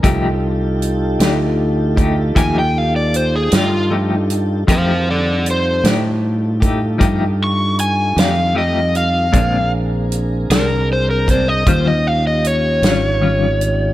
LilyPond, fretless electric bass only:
\new Staff \with { instrumentName = "Fretless electric bass" } { \clef bass \time 12/8 \key f \dorian \tempo 4. = 52 c,4. d,4. ees,4. g,4. | f,4. a,4. g,4. f,4. | bes,,4. c,4. ees,4. aes,,4. | }